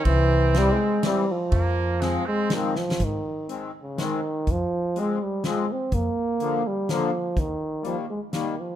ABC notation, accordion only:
X:1
M:3/4
L:1/8
Q:1/4=123
K:Fm
V:1 name="Accordion" clef=bass
z2 [=E,G,C] z [E,G,C] z | z2 [F,A,C] z [F,A,C] z | [K:Ab] z2 [E,A,C] z [E,A,C] z | z2 [F,A,C] z [F,A,C] z |
z2 [=D,F,B,] z [D,F,B,] z | z2 [E,G,B,] z [E,G,B,] z |]